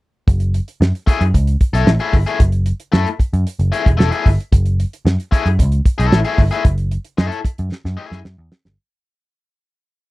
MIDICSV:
0, 0, Header, 1, 5, 480
1, 0, Start_track
1, 0, Key_signature, 3, "minor"
1, 0, Tempo, 531915
1, 249, Time_signature, 4, 2, 24, 8
1, 9121, End_track
2, 0, Start_track
2, 0, Title_t, "Overdriven electric guitar"
2, 0, Program_c, 0, 29
2, 962, Note_on_c, 0, 57, 70
2, 970, Note_on_c, 0, 64, 83
2, 978, Note_on_c, 0, 68, 88
2, 1092, Note_off_c, 0, 57, 0
2, 1096, Note_off_c, 0, 64, 0
2, 1099, Note_off_c, 0, 68, 0
2, 1566, Note_on_c, 0, 69, 78
2, 1574, Note_on_c, 0, 64, 74
2, 1576, Note_on_c, 0, 57, 58
2, 1693, Note_off_c, 0, 69, 0
2, 1697, Note_off_c, 0, 64, 0
2, 1698, Note_off_c, 0, 57, 0
2, 1806, Note_on_c, 0, 68, 85
2, 1813, Note_on_c, 0, 64, 88
2, 1816, Note_on_c, 0, 57, 73
2, 1933, Note_off_c, 0, 68, 0
2, 1936, Note_off_c, 0, 64, 0
2, 1938, Note_off_c, 0, 57, 0
2, 2044, Note_on_c, 0, 68, 60
2, 2050, Note_on_c, 0, 64, 62
2, 2053, Note_on_c, 0, 57, 56
2, 2144, Note_off_c, 0, 68, 0
2, 2147, Note_off_c, 0, 64, 0
2, 2149, Note_off_c, 0, 57, 0
2, 2635, Note_on_c, 0, 57, 85
2, 2641, Note_on_c, 0, 64, 88
2, 2648, Note_on_c, 0, 69, 82
2, 2766, Note_off_c, 0, 57, 0
2, 2770, Note_off_c, 0, 64, 0
2, 2773, Note_off_c, 0, 69, 0
2, 3357, Note_on_c, 0, 57, 84
2, 3358, Note_on_c, 0, 64, 97
2, 3366, Note_on_c, 0, 68, 98
2, 3487, Note_off_c, 0, 57, 0
2, 3487, Note_off_c, 0, 64, 0
2, 3491, Note_off_c, 0, 68, 0
2, 3584, Note_on_c, 0, 57, 62
2, 3596, Note_on_c, 0, 64, 65
2, 3600, Note_on_c, 0, 69, 68
2, 3692, Note_off_c, 0, 57, 0
2, 3698, Note_off_c, 0, 64, 0
2, 3701, Note_off_c, 0, 69, 0
2, 3709, Note_on_c, 0, 68, 95
2, 3717, Note_on_c, 0, 64, 85
2, 3723, Note_on_c, 0, 57, 75
2, 3842, Note_off_c, 0, 68, 0
2, 3846, Note_off_c, 0, 64, 0
2, 3849, Note_off_c, 0, 57, 0
2, 4796, Note_on_c, 0, 57, 78
2, 4801, Note_on_c, 0, 64, 80
2, 4809, Note_on_c, 0, 68, 92
2, 4925, Note_off_c, 0, 57, 0
2, 4927, Note_off_c, 0, 64, 0
2, 4931, Note_off_c, 0, 68, 0
2, 5398, Note_on_c, 0, 69, 95
2, 5404, Note_on_c, 0, 64, 84
2, 5409, Note_on_c, 0, 57, 71
2, 5578, Note_off_c, 0, 69, 0
2, 5581, Note_off_c, 0, 64, 0
2, 5584, Note_off_c, 0, 57, 0
2, 5639, Note_on_c, 0, 68, 81
2, 5647, Note_on_c, 0, 64, 85
2, 5653, Note_on_c, 0, 57, 73
2, 5766, Note_off_c, 0, 68, 0
2, 5770, Note_off_c, 0, 64, 0
2, 5773, Note_off_c, 0, 57, 0
2, 5875, Note_on_c, 0, 68, 55
2, 5884, Note_on_c, 0, 64, 51
2, 5891, Note_on_c, 0, 57, 46
2, 5977, Note_off_c, 0, 68, 0
2, 5981, Note_off_c, 0, 64, 0
2, 5985, Note_off_c, 0, 57, 0
2, 6477, Note_on_c, 0, 57, 89
2, 6487, Note_on_c, 0, 64, 97
2, 6493, Note_on_c, 0, 69, 100
2, 6658, Note_off_c, 0, 57, 0
2, 6663, Note_off_c, 0, 64, 0
2, 6666, Note_off_c, 0, 69, 0
2, 7192, Note_on_c, 0, 57, 88
2, 7202, Note_on_c, 0, 64, 103
2, 7208, Note_on_c, 0, 68, 107
2, 7377, Note_off_c, 0, 57, 0
2, 7382, Note_off_c, 0, 64, 0
2, 7384, Note_off_c, 0, 68, 0
2, 9121, End_track
3, 0, Start_track
3, 0, Title_t, "Picked electric bass"
3, 0, Program_c, 1, 34
3, 250, Note_on_c, 1, 30, 92
3, 530, Note_off_c, 1, 30, 0
3, 728, Note_on_c, 1, 42, 107
3, 822, Note_off_c, 1, 42, 0
3, 1090, Note_on_c, 1, 42, 76
3, 1183, Note_off_c, 1, 42, 0
3, 1212, Note_on_c, 1, 37, 97
3, 1397, Note_off_c, 1, 37, 0
3, 1564, Note_on_c, 1, 35, 77
3, 1659, Note_off_c, 1, 35, 0
3, 1686, Note_on_c, 1, 33, 85
3, 1780, Note_off_c, 1, 33, 0
3, 1922, Note_on_c, 1, 31, 79
3, 2018, Note_off_c, 1, 31, 0
3, 2164, Note_on_c, 1, 30, 105
3, 2445, Note_off_c, 1, 30, 0
3, 2649, Note_on_c, 1, 42, 101
3, 2741, Note_off_c, 1, 42, 0
3, 3009, Note_on_c, 1, 42, 89
3, 3101, Note_off_c, 1, 42, 0
3, 3243, Note_on_c, 1, 30, 89
3, 3337, Note_off_c, 1, 30, 0
3, 3486, Note_on_c, 1, 28, 87
3, 3578, Note_off_c, 1, 28, 0
3, 3603, Note_on_c, 1, 28, 93
3, 3697, Note_off_c, 1, 28, 0
3, 3845, Note_on_c, 1, 31, 93
3, 3937, Note_off_c, 1, 31, 0
3, 4082, Note_on_c, 1, 30, 105
3, 4362, Note_off_c, 1, 30, 0
3, 4561, Note_on_c, 1, 42, 106
3, 4654, Note_off_c, 1, 42, 0
3, 4924, Note_on_c, 1, 42, 85
3, 5043, Note_on_c, 1, 37, 95
3, 5057, Note_off_c, 1, 42, 0
3, 5229, Note_off_c, 1, 37, 0
3, 5409, Note_on_c, 1, 35, 71
3, 5499, Note_off_c, 1, 35, 0
3, 5524, Note_on_c, 1, 33, 86
3, 5616, Note_off_c, 1, 33, 0
3, 5759, Note_on_c, 1, 31, 89
3, 5853, Note_off_c, 1, 31, 0
3, 6001, Note_on_c, 1, 30, 112
3, 6281, Note_off_c, 1, 30, 0
3, 6483, Note_on_c, 1, 42, 95
3, 6575, Note_off_c, 1, 42, 0
3, 6851, Note_on_c, 1, 42, 74
3, 6941, Note_off_c, 1, 42, 0
3, 7086, Note_on_c, 1, 42, 100
3, 7178, Note_off_c, 1, 42, 0
3, 7324, Note_on_c, 1, 42, 87
3, 7417, Note_off_c, 1, 42, 0
3, 7446, Note_on_c, 1, 42, 87
3, 7538, Note_off_c, 1, 42, 0
3, 7566, Note_on_c, 1, 40, 93
3, 7658, Note_off_c, 1, 40, 0
3, 7811, Note_on_c, 1, 31, 78
3, 7902, Note_off_c, 1, 31, 0
3, 9121, End_track
4, 0, Start_track
4, 0, Title_t, "Muted picked electric bass strokes"
4, 968, Note_on_c, 9, 29, 48
4, 1059, Note_off_c, 9, 29, 0
4, 2882, Note_on_c, 9, 29, 47
4, 2972, Note_off_c, 9, 29, 0
4, 4803, Note_on_c, 9, 29, 51
4, 4893, Note_off_c, 9, 29, 0
4, 6720, Note_on_c, 9, 29, 42
4, 6810, Note_off_c, 9, 29, 0
4, 9121, End_track
5, 0, Start_track
5, 0, Title_t, "Drums"
5, 249, Note_on_c, 9, 36, 126
5, 252, Note_on_c, 9, 42, 87
5, 339, Note_off_c, 9, 36, 0
5, 342, Note_off_c, 9, 42, 0
5, 361, Note_on_c, 9, 42, 52
5, 451, Note_off_c, 9, 42, 0
5, 490, Note_on_c, 9, 42, 82
5, 580, Note_off_c, 9, 42, 0
5, 613, Note_on_c, 9, 42, 55
5, 703, Note_off_c, 9, 42, 0
5, 740, Note_on_c, 9, 38, 127
5, 830, Note_off_c, 9, 38, 0
5, 859, Note_on_c, 9, 42, 44
5, 949, Note_off_c, 9, 42, 0
5, 968, Note_on_c, 9, 36, 87
5, 975, Note_on_c, 9, 42, 81
5, 1058, Note_off_c, 9, 36, 0
5, 1066, Note_off_c, 9, 42, 0
5, 1092, Note_on_c, 9, 42, 51
5, 1182, Note_off_c, 9, 42, 0
5, 1212, Note_on_c, 9, 36, 79
5, 1215, Note_on_c, 9, 42, 91
5, 1302, Note_off_c, 9, 36, 0
5, 1305, Note_off_c, 9, 42, 0
5, 1330, Note_on_c, 9, 42, 54
5, 1420, Note_off_c, 9, 42, 0
5, 1450, Note_on_c, 9, 42, 66
5, 1451, Note_on_c, 9, 36, 79
5, 1540, Note_off_c, 9, 42, 0
5, 1541, Note_off_c, 9, 36, 0
5, 1575, Note_on_c, 9, 42, 61
5, 1579, Note_on_c, 9, 38, 40
5, 1665, Note_off_c, 9, 42, 0
5, 1670, Note_off_c, 9, 38, 0
5, 1689, Note_on_c, 9, 38, 111
5, 1779, Note_off_c, 9, 38, 0
5, 1801, Note_on_c, 9, 42, 37
5, 1891, Note_off_c, 9, 42, 0
5, 1925, Note_on_c, 9, 36, 90
5, 1927, Note_on_c, 9, 46, 71
5, 2016, Note_off_c, 9, 36, 0
5, 2017, Note_off_c, 9, 46, 0
5, 2052, Note_on_c, 9, 42, 38
5, 2142, Note_off_c, 9, 42, 0
5, 2165, Note_on_c, 9, 42, 93
5, 2166, Note_on_c, 9, 36, 118
5, 2255, Note_off_c, 9, 42, 0
5, 2256, Note_off_c, 9, 36, 0
5, 2277, Note_on_c, 9, 42, 56
5, 2367, Note_off_c, 9, 42, 0
5, 2399, Note_on_c, 9, 42, 82
5, 2489, Note_off_c, 9, 42, 0
5, 2524, Note_on_c, 9, 42, 57
5, 2615, Note_off_c, 9, 42, 0
5, 2647, Note_on_c, 9, 38, 118
5, 2738, Note_off_c, 9, 38, 0
5, 2768, Note_on_c, 9, 42, 50
5, 2859, Note_off_c, 9, 42, 0
5, 2883, Note_on_c, 9, 36, 84
5, 2891, Note_on_c, 9, 42, 66
5, 2973, Note_off_c, 9, 36, 0
5, 2981, Note_off_c, 9, 42, 0
5, 3010, Note_on_c, 9, 42, 51
5, 3100, Note_off_c, 9, 42, 0
5, 3129, Note_on_c, 9, 42, 87
5, 3220, Note_off_c, 9, 42, 0
5, 3245, Note_on_c, 9, 42, 46
5, 3335, Note_off_c, 9, 42, 0
5, 3368, Note_on_c, 9, 42, 67
5, 3458, Note_off_c, 9, 42, 0
5, 3485, Note_on_c, 9, 36, 101
5, 3495, Note_on_c, 9, 42, 57
5, 3576, Note_off_c, 9, 36, 0
5, 3585, Note_off_c, 9, 42, 0
5, 3611, Note_on_c, 9, 38, 120
5, 3702, Note_off_c, 9, 38, 0
5, 3719, Note_on_c, 9, 42, 43
5, 3809, Note_off_c, 9, 42, 0
5, 3842, Note_on_c, 9, 36, 90
5, 3845, Note_on_c, 9, 46, 69
5, 3932, Note_off_c, 9, 36, 0
5, 3936, Note_off_c, 9, 46, 0
5, 3975, Note_on_c, 9, 42, 46
5, 4065, Note_off_c, 9, 42, 0
5, 4083, Note_on_c, 9, 36, 121
5, 4085, Note_on_c, 9, 42, 101
5, 4173, Note_off_c, 9, 36, 0
5, 4175, Note_off_c, 9, 42, 0
5, 4202, Note_on_c, 9, 42, 52
5, 4292, Note_off_c, 9, 42, 0
5, 4330, Note_on_c, 9, 42, 79
5, 4420, Note_off_c, 9, 42, 0
5, 4453, Note_on_c, 9, 42, 59
5, 4543, Note_off_c, 9, 42, 0
5, 4571, Note_on_c, 9, 38, 113
5, 4662, Note_off_c, 9, 38, 0
5, 4691, Note_on_c, 9, 42, 49
5, 4781, Note_off_c, 9, 42, 0
5, 4801, Note_on_c, 9, 36, 78
5, 4811, Note_on_c, 9, 42, 78
5, 4891, Note_off_c, 9, 36, 0
5, 4901, Note_off_c, 9, 42, 0
5, 4927, Note_on_c, 9, 42, 58
5, 5017, Note_off_c, 9, 42, 0
5, 5045, Note_on_c, 9, 36, 84
5, 5050, Note_on_c, 9, 42, 95
5, 5135, Note_off_c, 9, 36, 0
5, 5140, Note_off_c, 9, 42, 0
5, 5160, Note_on_c, 9, 42, 52
5, 5250, Note_off_c, 9, 42, 0
5, 5283, Note_on_c, 9, 36, 86
5, 5285, Note_on_c, 9, 42, 63
5, 5373, Note_off_c, 9, 36, 0
5, 5375, Note_off_c, 9, 42, 0
5, 5414, Note_on_c, 9, 42, 57
5, 5504, Note_off_c, 9, 42, 0
5, 5526, Note_on_c, 9, 38, 108
5, 5617, Note_off_c, 9, 38, 0
5, 5636, Note_on_c, 9, 42, 44
5, 5726, Note_off_c, 9, 42, 0
5, 5760, Note_on_c, 9, 36, 93
5, 5764, Note_on_c, 9, 46, 77
5, 5850, Note_off_c, 9, 36, 0
5, 5854, Note_off_c, 9, 46, 0
5, 5888, Note_on_c, 9, 42, 41
5, 5978, Note_off_c, 9, 42, 0
5, 5999, Note_on_c, 9, 42, 99
5, 6000, Note_on_c, 9, 36, 126
5, 6090, Note_off_c, 9, 36, 0
5, 6090, Note_off_c, 9, 42, 0
5, 6116, Note_on_c, 9, 42, 52
5, 6206, Note_off_c, 9, 42, 0
5, 6240, Note_on_c, 9, 42, 85
5, 6330, Note_off_c, 9, 42, 0
5, 6358, Note_on_c, 9, 42, 53
5, 6448, Note_off_c, 9, 42, 0
5, 6481, Note_on_c, 9, 38, 120
5, 6572, Note_off_c, 9, 38, 0
5, 6604, Note_on_c, 9, 42, 46
5, 6695, Note_off_c, 9, 42, 0
5, 6719, Note_on_c, 9, 36, 83
5, 6726, Note_on_c, 9, 42, 80
5, 6809, Note_off_c, 9, 36, 0
5, 6816, Note_off_c, 9, 42, 0
5, 6842, Note_on_c, 9, 42, 55
5, 6933, Note_off_c, 9, 42, 0
5, 6968, Note_on_c, 9, 38, 57
5, 7059, Note_off_c, 9, 38, 0
5, 7088, Note_on_c, 9, 38, 50
5, 7178, Note_off_c, 9, 38, 0
5, 7327, Note_on_c, 9, 38, 64
5, 7417, Note_off_c, 9, 38, 0
5, 7446, Note_on_c, 9, 38, 94
5, 7536, Note_off_c, 9, 38, 0
5, 7686, Note_on_c, 9, 38, 104
5, 7776, Note_off_c, 9, 38, 0
5, 7807, Note_on_c, 9, 38, 85
5, 7897, Note_off_c, 9, 38, 0
5, 9121, End_track
0, 0, End_of_file